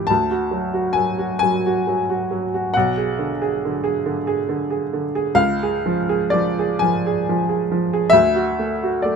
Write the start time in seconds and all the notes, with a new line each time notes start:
Already playing: C#2 E3 G4
0.07 D2 A5
0.31 F#4
0.51 F#3
0.74 F#4
0.93 F#3 G#5
1.18 F#4
1.39 F#3 G#5
1.66 F#4
1.87 F#3
2.10 F#4
2.31 F#3
2.54 F#4
2.74 B1 F#5
2.97 G#4
3.19 D3
3.42 G#4
3.65 D3
3.84 G#4
4.06 D3
4.27 G#4
4.49 D3
4.70 G#4
4.93 D3
5.15 G#4
5.35 C#2 F5
5.63 G#4
5.86 F3
6.09 G#4
6.30 F3 D5
6.59 G#4
6.79 F3 G#5
7.06 G#4
7.29 F3
7.49 G#4
7.71 F3
7.93 G#4
8.10 D2 E5
8.36 F#4
8.59 A3
8.83 F#4
9.02 A3 D5